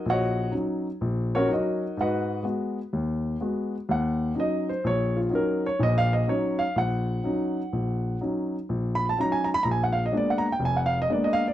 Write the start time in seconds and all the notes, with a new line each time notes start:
0.06 A#1
0.10 F#4 C#5 D#5 F#5
0.52 F#3 C#4 D#4
1.01 A#1
1.35 C#4 F#4 A#4 C#5
1.48 F#3 C#4 D#4
1.53 D#4 F#4 A#4 D#5
1.97 G#2 F#4 B4 D#5 F#5
2.43 G#3 B3 F#4
2.93 D#2
3.41 G#3 B3 F#4
3.89 D#2 F#5
4.35 F#3 C#4 D#4
4.40 D#5
4.69 C5
4.84 A#1 C#5
5.17 F4
5.30 F#3 C#4 D#4
5.35 A#4
5.66 C#5
5.79 A#1 A#2 D#5
5.98 F5
6.13 D#5
6.27 F#3 C#4 D#4 C#5
6.59 F5
6.76 A#1 F#5
7.24 F#3 C#4 D#4
7.73 A#1
8.21 F#3 C#4 D#4
8.69 A#1
8.95 B5
9.09 A5
9.17 F#3 C#4 D#4 A#5
9.32 G#5
9.44 A#5
9.54 B5
9.63 A#1 A#5
9.71 G#5
9.84 F#5
9.93 F5
10.06 D#5
10.12 G#3 A#3 B3 D4
10.17 D5
10.30 F#5
10.38 A#5
10.52 G5
10.59 F1
10.65 G#5
10.77 F#5
10.86 F5
11.02 D#5
11.09 G#3 A#3 B3 D4 D5
11.24 D#5
11.33 F5
11.48 D5